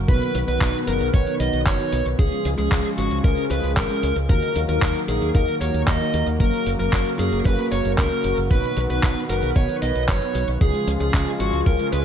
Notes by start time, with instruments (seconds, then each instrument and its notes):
Already playing: analog synth pad F#3 F#4
0.08 fingered electric bass B1, analog polysynth B2 B3 D#4 F#4 B4, analog synth pad D#3 B3 B4, lead electric guitar B4, kick, closed hi-hat
0.22 closed hi-hat
0.35 fingered electric bass B1, closed hi-hat
0.48 fingered electric bass B1, analog polysynth B2 B3 D#4 F#4 B4, lead electric guitar B4, closed hi-hat
0.61 fingered electric bass B1, kick, clap, closed hi-hat
0.74 closed hi-hat
0.87 fingered electric bass F#1, analog polysynth B2 B3 D#4 F#4 G#4, lead electric guitar A#4, closed hi-hat
1.01 fingered electric bass B1, closed hi-hat
1.14 fingered electric bass B1, lead electric guitar C#5, kick, closed hi-hat
1.27 analog polysynth B2 B3 D#4 F#4 B4, closed hi-hat
1.40 fingered electric bass B1, lead electric guitar D#5, closed hi-hat
1.53 fingered electric bass B1, closed hi-hat
1.66 fingered electric bass F#1, lead electric guitar C#5, kick, clap, closed hi-hat
1.79 analog polysynth B2 B3 D#4 F#4 B4, closed hi-hat
1.93 fingered electric bass B1, closed hi-hat
2.06 fingered electric bass B1, closed hi-hat
2.19 fingered electric bass C#2, analog polysynth C#3 G#3 C#4 F4 G#4, analog synth pad C#3 F3 G#3 F4 G#4, lead electric guitar G#4, kick, closed hi-hat
2.32 closed hi-hat
2.45 fingered electric bass C#2, closed hi-hat
2.58 fingered electric bass C#2, analog polysynth C#3 G#3 C#4 F4 G#4, lead electric guitar G#4, closed hi-hat
2.72 fingered electric bass C#2, kick, clap, closed hi-hat
2.85 closed hi-hat
2.98 fingered electric bass G#1, analog polysynth C#3 G#3 C#4 F4 G#4, lead electric guitar F#4, closed hi-hat
3.11 fingered electric bass C#2, closed hi-hat
3.24 fingered electric bass C#2, lead electric guitar A#4, kick, closed hi-hat
3.37 analog polysynth C#3 G#3 C#4 F4 G#4, closed hi-hat
3.51 fingered electric bass C#2, lead electric guitar B4, closed hi-hat
3.64 fingered electric bass C#2, closed hi-hat
3.77 fingered electric bass G#1, lead electric guitar A#4, kick, clap, closed hi-hat
3.90 analog polysynth C#3 G#3 C#4 F4 G#4, closed hi-hat
4.03 fingered electric bass C#2, closed hi-hat
4.16 fingered electric bass C#2, closed hi-hat
4.29 fingered electric bass D#2, analog polysynth D#3 A#3 D#4 F#4 A#4, analog synth pad D#3 F#3 A#3 F#4 A#4, lead electric guitar A#4, kick, closed hi-hat
4.43 closed hi-hat
4.56 fingered electric bass D#2, closed hi-hat
4.69 fingered electric bass D#2, analog polysynth D#3 A#3 D#4 F#4 A#4, lead electric guitar A#4, closed hi-hat
4.82 fingered electric bass D#2, kick, clap, closed hi-hat
4.95 closed hi-hat
5.08 fingered electric bass A#1, analog polysynth D#3 A#3 D#4 F#4 G#4, lead electric guitar G#4, closed hi-hat
5.22 fingered electric bass D#2, closed hi-hat
5.35 fingered electric bass D#2, lead electric guitar A#4, kick, closed hi-hat
5.48 analog polysynth D#3 A#3 D#4 F#4 A#4, closed hi-hat
5.61 fingered electric bass D#2, analog polysynth D#3 A#3 D#4 F#4 A#4, lead electric guitar C#5, closed hi-hat
5.74 fingered electric bass D#2, closed hi-hat
5.87 fingered electric bass D#2, lead electric guitar D#5, kick, clap, closed hi-hat
6.01 analog polysynth D#3 A#3 D#4 F#4 A#4, closed hi-hat
6.14 fingered electric bass D#2, closed hi-hat
6.27 fingered electric bass D#2, closed hi-hat
6.40 fingered electric bass F#1, analog synth pad C#3, analog polysynth A#3 C#4 F#4 A#4, lead electric guitar A#4, kick, closed hi-hat
6.53 closed hi-hat
6.66 fingered electric bass F#1, closed hi-hat
6.79 fingered electric bass F#1, analog polysynth A#3 C#4 F#4 A#4, lead electric guitar A#4, closed hi-hat
6.93 fingered electric bass F#1, kick, clap, closed hi-hat
7.06 closed hi-hat
7.19 fingered electric bass F#2, analog polysynth A#3 C#4 F#4 G#4, lead electric guitar G#4, closed hi-hat
7.32 fingered electric bass F#1, closed hi-hat
7.45 fingered electric bass F#1, lead electric guitar B4, kick, closed hi-hat
7.59 analog polysynth A#3 C#4 F#4 A#4, closed hi-hat
7.72 fingered electric bass F#1, lead electric guitar C#5, closed hi-hat
7.85 fingered electric bass F#1, closed hi-hat
7.98 fingered electric bass C#2, lead electric guitar A#4, kick, clap, closed hi-hat
8.11 analog polysynth A#3 C#4 F#4 A#4, closed hi-hat
8.24 fingered electric bass F#1, closed hi-hat
8.37 fingered electric bass F#1, closed hi-hat
8.51 fingered electric bass B1, analog polysynth B2 B3 D#4 F#4 B4, analog synth pad D#3 B3 B4, lead electric guitar B4, kick, closed hi-hat
8.64 closed hi-hat
8.77 fingered electric bass B1, closed hi-hat
8.90 fingered electric bass B1, analog polysynth B2 B3 D#4 F#4 B4, lead electric guitar B4, closed hi-hat
9.03 fingered electric bass B1, kick, clap, closed hi-hat
9.16 closed hi-hat
9.29 fingered electric bass F#1, analog polysynth B2 B3 D#4 F#4 G#4, lead electric guitar A#4, closed hi-hat
9.43 fingered electric bass B1, closed hi-hat
9.56 fingered electric bass B1, lead electric guitar C#5, kick, closed hi-hat
9.69 analog polysynth B2 B3 D#4 F#4 B4, closed hi-hat
9.82 fingered electric bass B1, lead electric guitar D#5, closed hi-hat
9.95 fingered electric bass B1, closed hi-hat
10.08 fingered electric bass F#1, lead electric guitar C#5, kick, clap, closed hi-hat
10.22 analog polysynth B2 B3 D#4 F#4 B4, closed hi-hat
10.35 fingered electric bass B1, closed hi-hat
10.48 fingered electric bass B1, closed hi-hat
10.61 fingered electric bass C#2, analog polysynth C#3 G#3 C#4 F4 G#4, analog synth pad C#3 F3 G#3 F4 G#4, lead electric guitar G#4, kick, closed hi-hat
10.74 closed hi-hat
10.87 fingered electric bass C#2, closed hi-hat
11.00 fingered electric bass C#2, analog polysynth C#3 G#3 C#4 F4 G#4, lead electric guitar G#4, closed hi-hat
11.14 fingered electric bass C#2, kick, clap, closed hi-hat
11.27 closed hi-hat
11.40 fingered electric bass G#1, analog polysynth C#3 G#3 C#4 F4 G#4, lead electric guitar F#4, closed hi-hat
11.53 fingered electric bass C#2, closed hi-hat
11.66 fingered electric bass C#2, lead electric guitar A#4, kick, closed hi-hat
11.79 analog polysynth C#3 G#3 C#4 F4 G#4, closed hi-hat
11.92 fingered electric bass C#2, lead electric guitar B4, closed hi-hat